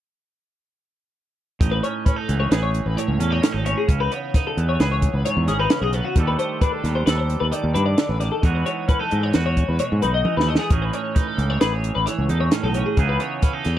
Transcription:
1.60 A1 A2 D#4, kick, closed hi-hat
1.71 B4
1.83 C#4 C#5, closed hi-hat
2.05 C#4 B4, kick, closed hi-hat
2.16 D#4 A4
2.28 C#2 E3, closed hi-hat
2.40 C#5
2.51 A1 G#4 B4, snare, closed hi-hat
2.63 C#5
2.74 closed hi-hat
2.86 A1 B4
2.96 A2 C#5, closed hi-hat
3.08 C#2
3.19 E2 C#4 A4, closed hi-hat
3.30 D#4 C#5
3.41 A2 C#4, snare, closed hi-hat
3.52 G#1 D#4 A4
3.64 C#4 C#5, closed hi-hat
3.77 G#4
3.87 C#2 C#3 C#4, kick, closed hi-hat
4.00 D#4 B4
4.11 B3 C#5, closed hi-hat
4.34 D#4 B4, kick, snare, closed hi-hat
4.47 A4
4.57 E2 E3, closed hi-hat
4.69 C#5
4.80 C#2 G#4 B4, snare, closed hi-hat
4.92 C#5
5.02 kick, closed hi-hat
5.14 C#2 B4
5.25 G#2 C#5, closed hi-hat
5.37 E2
5.48 G#1 C#4 G#4, snare, closed hi-hat
5.59 D#4 B4
5.70 C#3 C#4, snare, closed hi-hat
5.81 B1 D#4 G#4
5.93 B3 B4, closed hi-hat
6.05 F#4
6.16 D#2 D#3 G3 A3 D4, kick, closed hi-hat
6.20 A4
6.27 B4
6.39 A3 C5, closed hi-hat
6.61 D4 B4, kick, closed hi-hat
6.72 A4
6.84 D#2 G3, snare, closed hi-hat
6.95 C5
7.06 D#2 A4 B4, snare, closed hi-hat
7.18 C5
7.30 closed hi-hat
7.40 D#2 B4
7.52 D#3 D5, closed hi-hat
7.64 D#2
7.74 G2 D4 B4, closed hi-hat
7.86 D5
7.97 D3, snare, closed hi-hat
8.09 A1 B4
8.20 D#3 D5, snare, closed hi-hat
8.32 A4
8.42 E2 E3 G#3 B3 D#4 F#4, kick, closed hi-hat
8.55 B4
8.65 B3 C#5, closed hi-hat
8.88 C#4 B4, kick, closed hi-hat
8.99 D#4 A4
9.11 G#2 G#3, closed hi-hat
9.23 C#5
9.33 E2 F#4 B4, snare, closed hi-hat
9.46 C#5
9.57 kick, closed hi-hat
9.68 E2 B4
9.79 B2 C#5, closed hi-hat
9.92 G#2
10.02 B1 D#4 B4, closed hi-hat
10.14 D#5
10.25 E3 D#4, high tom
10.37 D#2 B4, snare
10.47 A3 D#5
10.55 G#4, snare
10.60 B3
10.70 A1 A2 E3 C#4 D#4 G#4, kick, closed hi-hat
10.82 B4
10.93 C#4 C#5, closed hi-hat
11.15 D#4 B4, kick, closed hi-hat
11.27 A4
11.37 C#2 E3, closed hi-hat
11.50 C#5
11.61 A1 G#4 B4, snare, closed hi-hat
11.73 C#5
11.84 closed hi-hat
11.95 A1 B4
12.06 E3 C#5, snare, closed hi-hat
12.18 C#2
12.29 E2 D#4 A4, closed hi-hat
12.40 C#5
12.51 A2 C#4, snare, closed hi-hat
12.63 B1 D#4 A4
12.74 C#4 C#5, closed hi-hat
12.86 G#4
12.97 C#2 C#3 E3 B3 D#4 G#4, kick, closed hi-hat
13.09 B4
13.20 B3 C#5, closed hi-hat
13.42 C#4 B4, kick, closed hi-hat
13.53 D#4 A4
13.65 E2 E3, snare, closed hi-hat

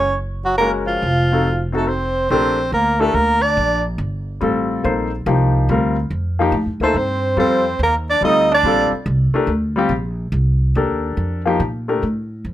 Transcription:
Already playing: F#1 C#4 C#5
0.44 F#3 F#4
0.58 G#3 A#3 C#4 F#4 A#4
0.86 F3 F4
1.02 F1
1.32 C4 D#4 F#4 A4
1.72 A3 C4 D#4 F#4 A4
1.76 A4
1.88 C4 C5
2.30 A#1 A3 C4 D4 G4 A#4 C5
2.72 D2 A#3 A#4
2.99 A3 D4 G4 A4 A#4
3.14 D2 A#3 A#4
3.42 D4 D5
3.57 A#1
3.98 G1
4.41 A1 G3 C4 F4 A4
4.84 A#1 A#3 D#4 A4 C5
5.26 C2 F3 A#3 D#4 G4
5.69 D2 G3 C4 F4 A#4
6.10 F2
6.39 F3 A#3 D#4 G4
6.52 A2
6.66 F2
6.80 D2 A3 A#3 D#4 A4 C5
6.94 G2 C5
6.98 C4
7.37 F2 G3 C4 F4 A4 C5
7.41 C4
7.79 D#2 A#3
7.83 A#4
8.10 D4 D5
8.21 D2 G3 C4 D#4 F4 A4 D#5
8.52 D4 D5
8.63 A#1 G3 C4 F4 A4
8.92 muted upright bass stroke
9.06 C2
9.34 A3 D4 G4 A#4, muted upright bass stroke
9.47 D2
9.76 G3 C4 F4 G4
9.89 A#1
10.32 C2
10.75 D#2 D4 G4 A4 A#4
11.17 F2
11.46 F3 A#3 D#4 G4
11.60 A#2
11.88 A3 D4 G4 A#4
12.03 A2
12.45 F2

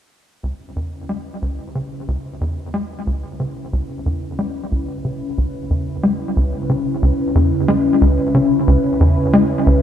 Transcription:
0.43 C#2 C#3
0.50 C#4
0.76 E2
0.83 E4 B4
1.09 G#3
1.42 C#2
1.75 C#3
2.08 C#2
2.41 E2
2.74 G#3
3.07 C#2
3.40 C#3
3.73 C#2
4.06 E2
4.39 G#3
4.72 C#2
5.04 C#3
5.38 C#2
5.70 E2
6.03 G#3
6.36 C#2
6.69 C#3
7.02 C#2
7.35 E2
7.68 G#3
8.01 C#2
8.34 C#3
8.67 C#2
9.00 E2
9.33 G#3
9.66 C#2

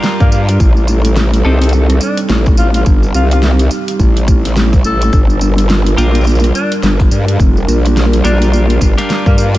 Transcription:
Already playing: G3 D4 F4 G4 A#4
0.03 snare, tambourine
0.20 G2 A#3, kick, tambourine
0.31 A#3, tambourine
0.49 closed hi-hat, tambourine
0.60 A1 C4 D#4 A4, kick, tambourine
0.77 tambourine
0.88 tambourine
1.05 closed hi-hat, tambourine
1.16 snare, tambourine
1.34 closed hi-hat, tambourine
1.45 C2 C4 D#4 G4 A4
1.62 closed hi-hat, tambourine
1.64 closed hi-hat
1.69 closed hi-hat, tambourine
1.90 cross-stick, closed hi-hat, tambourine
1.92 cross-stick
1.95 cross-stick
1.98 cross-stick
2.01 D4, cross-stick, tambourine
2.05 cross-stick
2.09 cross-stick
2.14 cross-stick
2.17 cross-stick, closed hi-hat, tambourine
2.29 A1, snare, tambourine
2.46 kick, tambourine
2.57 A1 F4, tambourine
2.74 F4, closed hi-hat, tambourine
2.86 G1 G4, kick, tambourine
3.03 tambourine
3.14 C2 F4, cross-stick, tambourine
3.31 F4, closed hi-hat, tambourine
3.43 snare
3.59 closed hi-hat, tambourine
3.71 tambourine
3.88 closed hi-hat, tambourine
3.99 A1, kick, tambourine
4.17 closed hi-hat, tambourine
4.28 kick, tambourine
4.45 snare, closed hi-hat, tambourine
4.56 snare, tambourine
4.73 kick, tambourine
4.84 A1 A4, tambourine
5.02 closed hi-hat, tambourine
5.13 G1 G3 D4 F4 A#4, kick, tambourine
5.30 tambourine
5.41 tambourine
5.58 closed hi-hat, tambourine
5.70 snare, tambourine
5.87 closed hi-hat, tambourine
5.97 A#1 D4 F4 G4 A#4, tambourine
6.15 closed hi-hat, tambourine
6.18 tambourine
6.21 tambourine
6.24 tambourine
6.27 tambourine
6.31 tambourine
6.35 tambourine
6.40 tambourine
6.44 cross-stick, closed hi-hat, tambourine
6.55 D4, cross-stick, tambourine
6.72 cross-stick, closed hi-hat, tambourine
6.83 G1, snare, tambourine
7.00 kick, tambourine
7.11 G2, tambourine
7.28 closed hi-hat
7.40 F1 G4, kick, tambourine
7.57 tambourine
7.68 A#1, cross-stick, tambourine
7.86 closed hi-hat, tambourine
7.97 snare, tambourine
8.13 closed hi-hat, tambourine
8.24 A#1 D4 F4 G4 A#4, tambourine
8.42 closed hi-hat, tambourine
8.53 tambourine
8.70 closed hi-hat, tambourine
8.81 G1, kick, tambourine
8.98 D4 F4 G4 A#4, snare, closed hi-hat, tambourine
9.10 snare, tambourine
9.26 G2 A#3, kick, tambourine
9.38 A#3, tambourine
9.55 closed hi-hat, tambourine

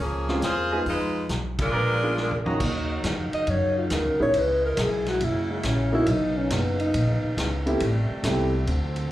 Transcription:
0.00 C#2 F3 A#3 C#4 G#4
0.28 G#3 C4 C#4 F4, snare
0.42 E2 A#3 F4 G#4 C5, snare, closed hi-hat
0.71 G#3 B3 D#4 F4 B4 D#5 G#5
0.86 F2 G#3 D#4 F4 B4, open hi-hat
1.29 B1, snare, closed hi-hat
1.59 G#3 D4 F4 A#4, kick, ride
1.72 A#1 G#4 B4 D5 A#5
2.03 G#3 B3 D4 F4
2.17 snare
2.31 floor tom
2.46 D#2 F#3 A#3 C#4 F4 F#4 C#5 D#5 A#5, floor tom
2.60 D#2 C#3 F#3 A#3 D#4, kick, crash
3.03 F2, snare, hi-hat pedal, ride
3.33 D#5, muted upright bass stroke, ride
3.47 F#2 C#5, ride
3.78 F4
3.90 D#2 A#4, snare, hi-hat pedal, ride
4.05 C#2
4.20 A#1 G#3 B3 C#4 D#4 E4 C#5
4.33 C#2 G#3 B3 E4, ride
4.38 B4
4.66 A#4
4.77 B1, snare, hi-hat pedal, ride
4.82 G#4
5.06 F#4, snare, ride
5.21 F#1 F#3 A#3 E4, ride
5.51 G#3
5.63 A#1 C#4, snare, hi-hat pedal, ride
5.92 A#3 B3 C#4 D#4 E4 F#4
6.06 B1 B3 D#4, ride
6.37 C#4
6.50 F#1 B3, snare, hi-hat pedal, ride
6.80 D#4, ride
6.94 A#1, ride
7.23 muted upright bass stroke
7.37 C#2, snare, hi-hat pedal, ride
7.66 A3 B3 C4 E4 G4, ride
7.80 A1 C3 G3 A3, ride
8.10 muted upright bass stroke
8.24 C2 A3 B3 C4 E4 G4, snare, hi-hat pedal, ride
8.67 D2 D3 F#3 C4, ride
8.96 ride

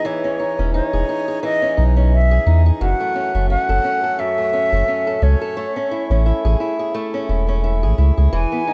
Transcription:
Already playing: E3 B3 D#4 G#4
0.05 E3 C#5
0.24 C#4
0.39 D#4
0.59 E1 C#4
0.74 D#4 C#5
0.93 E1 G#4
1.09 D#4
1.28 G#4
1.43 E3 D#5
1.62 C#4
1.77 B1 D#4
1.96 C#4
2.12 E5
2.31 G#4
2.46 E2 D#4
2.66 G#4
2.81 F#1 F#2 F#5
3.00 A3
3.15 C#4
3.35 F#1 A3
3.50 C#4 F#5
3.69 F#1 A4
3.84 C#4
4.04 A4
4.19 F#2 E5
4.38 A3
4.53 C#4
4.72 F#1 A3
4.88 C#4
5.07 A4
5.22 C#2 C#4 C#5
5.41 A4
5.57 A3
5.76 C#4
5.91 E4
6.10 A1 C#4
6.26 E4
6.45 A1 G#4
6.60 E4
6.79 G#4
6.94 A3
7.14 C#4
7.29 E1 E4
7.48 C#4
7.64 E4
7.83 A1 G#4
7.98 C#2 E4
8.17 C#2 G#4
8.33 E1 E3 G#5
8.52 B3
8.67 D#4

